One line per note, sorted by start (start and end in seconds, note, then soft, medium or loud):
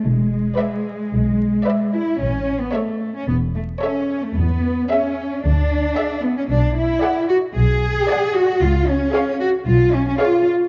0.04 0.47 E1 soft
0.04 1.93 G#3 medium
0.57 0.98 B4 soft
0.57 0.99 D5 soft
0.57 0.99 E5 soft
1.13 1.55 B1 soft
1.66 2.07 B4 soft
1.66 2.06 D5 soft
1.66 2.06 E5 soft
1.94 2.20 E4 medium
2.20 2.63 A1 soft
2.20 2.60 C#4 medium
2.61 2.74 B3 medium
2.73 3.15 A3 soft
2.73 3.15 A4 soft
2.73 3.15 C#5 soft
2.73 3.14 E5 soft
3.16 3.28 C#4 medium
3.28 3.71 E1 soft
3.28 3.36 B3 medium
3.55 3.63 A3 soft
3.82 4.22 C#4 medium
3.82 4.22 A4 soft
3.82 4.22 C#5 soft
3.82 4.22 E5 soft
4.23 4.37 A3 medium
4.37 4.79 E2 medium
4.37 4.91 B3 medium
4.90 5.43 C#4 medium
4.90 5.30 G#4 soft
4.90 5.30 E5 soft
5.44 5.86 D2 soft
5.44 6.22 D4 medium
5.96 6.36 G#4 soft
5.96 6.36 E5 soft
6.22 6.36 B3 medium
6.37 6.42 C#4 medium
6.49 6.92 B1 medium
6.49 6.75 D4 medium
6.76 7.28 E4 medium
7.03 7.43 G#4 soft
7.03 7.43 D5 soft
7.03 7.43 F#5 medium
7.29 7.37 F#4 medium
7.56 7.98 B1 medium
7.56 8.34 G#4 medium
8.09 8.49 G#4 soft
8.09 8.49 D5 soft
8.09 8.49 F#5 medium
8.35 8.62 F#4 medium
8.61 9.04 C#2 medium
8.61 8.88 F4 medium
8.88 9.42 C#4 medium
9.15 9.54 G#4 medium
9.15 9.55 C#5 soft
9.15 9.55 F5 medium
9.41 9.49 F#4 medium
9.67 10.10 B1 medium
9.67 9.94 F4 medium
9.93 10.07 C#4 medium
10.08 10.21 C#4 medium
10.20 10.47 F4 medium
10.20 10.60 G#4 medium
10.20 10.61 C#5 medium
10.20 10.61 F5 medium